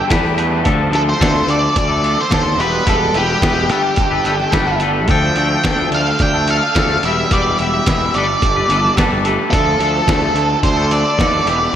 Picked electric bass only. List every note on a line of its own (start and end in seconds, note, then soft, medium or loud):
0.11 0.66 E2 medium
0.66 0.86 D2 medium
0.91 1.12 D2 medium
1.21 1.40 D2 medium
1.47 1.67 D2 medium
1.76 2.15 D2 medium
2.31 2.59 D#2 medium
2.58 2.78 E1 medium
2.86 3.06 E1 medium
3.14 3.34 E1 medium
3.42 3.69 E1 medium
3.69 3.89 G1 medium
3.97 4.17 G1 medium
4.24 4.45 G1 medium
4.52 5.08 G1 medium
5.08 5.28 D2 medium
5.35 5.55 D2 medium
5.64 5.84 D2 medium
5.91 6.11 D2 medium
6.20 6.59 D2 medium
6.75 6.95 D2 medium
7.04 7.23 E1 medium
7.31 7.50 E1 medium
7.60 7.79 E1 medium
7.87 8.06 E1 medium
8.15 8.34 G1 medium
8.42 8.62 G1 medium
8.69 8.89 G1 medium
8.97 9.36 G1 medium
9.52 9.72 D2 loud
9.79 10.00 D2 medium
10.07 10.27 D2 medium
10.34 10.55 D2 medium
10.63 11.03 D2 medium
11.19 11.39 D#2 medium
11.46 11.66 E1 medium